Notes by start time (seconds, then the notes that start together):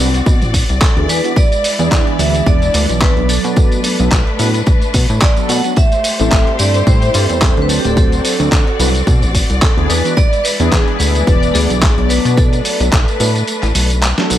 Already playing: C4 F#4 D5
0.00 C2, tambourine
0.14 closed hi-hat, tambourine
0.26 B2, kick, closed hi-hat, tambourine
0.42 A1, closed hi-hat, tambourine
0.54 kick, open hi-hat, tambourine
0.69 C2, closed hi-hat, tambourine
0.81 A4, kick, clap, closed hi-hat, tambourine
0.96 D2 E3 B3 D4 G#4, closed hi-hat
1.09 E2 G#3 E4 B4, open hi-hat, tambourine
1.23 E3 B3 D4 F#4, closed hi-hat, tambourine
1.36 D5, kick, closed hi-hat, tambourine
1.52 closed hi-hat, tambourine
1.64 open hi-hat, tambourine
1.79 E2 E3 B3 D4 G#4, closed hi-hat, tambourine
1.91 E2, kick, clap, closed hi-hat, tambourine
2.07 closed hi-hat
2.18 D2 E3 B3 D4 G#4 E5, open hi-hat, tambourine
2.35 closed hi-hat, tambourine
2.45 E1 E3 B3 D4 D5, kick, closed hi-hat, tambourine
2.62 closed hi-hat, tambourine
2.74 D2, open hi-hat, tambourine
2.89 B1, closed hi-hat, tambourine
3.02 B4, kick, clap, closed hi-hat, tambourine
3.16 B1 F#3 B3 D4 D5, closed hi-hat
3.29 A3 D4 A4 B4, open hi-hat, tambourine
3.44 B2, closed hi-hat, tambourine
3.56 kick, closed hi-hat, tambourine
3.72 closed hi-hat, tambourine
3.84 open hi-hat, tambourine
3.99 B1 F#3 B3 D4 A4, closed hi-hat, tambourine
4.12 B1, kick, clap, closed hi-hat, tambourine
4.27 closed hi-hat
4.38 A2 F#3 B3 D4 B4, open hi-hat, tambourine
4.54 closed hi-hat, tambourine
4.67 kick, closed hi-hat, tambourine
4.82 closed hi-hat, tambourine
4.94 B2, kick, open hi-hat, tambourine
5.09 A2, closed hi-hat, tambourine
5.22 D5, kick, clap, closed hi-hat, tambourine
5.36 F#3 B3 D4 A4, closed hi-hat, tambourine
5.49 B2 F#5, open hi-hat, tambourine
5.64 F#3 B3 D4 F#4, closed hi-hat, tambourine
5.76 G4 C5 E5, kick, closed hi-hat, tambourine
5.92 closed hi-hat, tambourine
6.04 open hi-hat, tambourine
6.19 A1 G3 C4 E4 A4, closed hi-hat, tambourine
6.32 A1, kick, clap, closed hi-hat, tambourine
6.47 closed hi-hat
6.59 G2 G3 C4 E4 A4 D5, open hi-hat, tambourine
6.74 closed hi-hat, tambourine
6.86 A2 G3 C4 E4 C5, kick, closed hi-hat, tambourine
7.02 closed hi-hat, tambourine
7.14 G2 A4, open hi-hat, tambourine
7.29 E2, closed hi-hat, tambourine
7.42 kick, clap, closed hi-hat, tambourine
7.56 D2 F#3 C4 D4 C5, closed hi-hat
7.62 B4
7.69 C4 F#4 A4 D5, open hi-hat, tambourine
7.80 G4
7.85 D1, closed hi-hat, tambourine
7.89 A4
7.97 A4, kick, closed hi-hat, tambourine
8.12 closed hi-hat, tambourine
8.25 A4, open hi-hat, tambourine
8.40 D2 F#3 C4 D4 A4, closed hi-hat, tambourine
8.52 D2, kick, clap, closed hi-hat, tambourine
8.67 closed hi-hat
8.79 C2 F#3 C4 D4 B4, open hi-hat, tambourine
8.95 closed hi-hat, tambourine
9.07 B2, kick, closed hi-hat, tambourine
9.22 A1, closed hi-hat, tambourine
9.34 kick, open hi-hat, tambourine
9.50 C2, closed hi-hat, tambourine
9.62 A4, kick, clap, closed hi-hat, tambourine
9.77 D2 E3 B3 D4 G#4, closed hi-hat
9.89 E2 G#3 E4 B4, open hi-hat, tambourine
10.04 E3 B3 D4 F#4, closed hi-hat, tambourine
10.17 D5, kick, closed hi-hat, tambourine
10.33 closed hi-hat, tambourine
10.44 B4, open hi-hat, tambourine
10.60 E2 E3 B3 D4 G#4, closed hi-hat, tambourine
10.72 E2 G#4, kick, clap, closed hi-hat, tambourine
10.88 closed hi-hat
10.99 D2 E3 B3 D4 G#4 B4, open hi-hat, tambourine
11.15 closed hi-hat, tambourine
11.26 E1 E3 B3 D4 D5, kick, closed hi-hat, tambourine
11.43 closed hi-hat, tambourine
11.54 D2 G#4, open hi-hat, tambourine
11.70 B1, closed hi-hat, tambourine
11.82 kick, clap, closed hi-hat, tambourine
11.97 B1 F#3 B3 D4 D5, closed hi-hat
12.09 A3 D4 B4, open hi-hat, tambourine
12.25 B2, closed hi-hat, tambourine
12.37 A4, kick, closed hi-hat, tambourine
12.53 closed hi-hat, tambourine
12.65 open hi-hat, tambourine
12.80 B1 F#3 B3 D4 A4, closed hi-hat, tambourine
12.92 B1, kick, clap, closed hi-hat, tambourine
13.08 closed hi-hat, tambourine
13.20 A2 F#3 B3 D4 B4, open hi-hat, tambourine
13.35 closed hi-hat, tambourine
13.48 closed hi-hat, tambourine
13.63 A1, clap, closed hi-hat, tambourine
13.75 B1, open hi-hat, tambourine
13.90 closed hi-hat, tambourine
14.03 clap, closed hi-hat, tambourine
14.18 F#3 B3 D4 A4, snare, closed hi-hat
14.30 B1, open hi-hat, tambourine